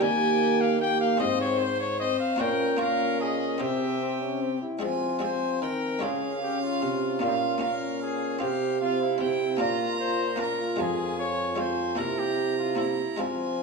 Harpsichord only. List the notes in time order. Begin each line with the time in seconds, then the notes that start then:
0.00 D#3 G3 A#4
1.17 G#2 C4 G#4 C5
2.36 A#2 A#3 F4 C#5
2.77 A#3 F4 C#5
3.58 C3 C4 C5
4.79 F3 G#3 C4 G#4
5.19 G#3 C4 G#4
5.62 D#3
5.99 C#3 G#3 F4 C#5
6.82 C3
7.19 A#2 A#3 C#4 F4
7.58 A#3 C#4 F4
8.39 C3 C4 F4
9.18 C3 C4
9.57 A#2 A#3 C#4 F4
10.36 A#3 C#4 F4
10.76 F2 C3 G#3 F4
11.55 G#3 C4 F4
11.95 C3 A#3 C4 E4
12.75 A#3 C4 E4
13.16 F3 G#3 C4 F4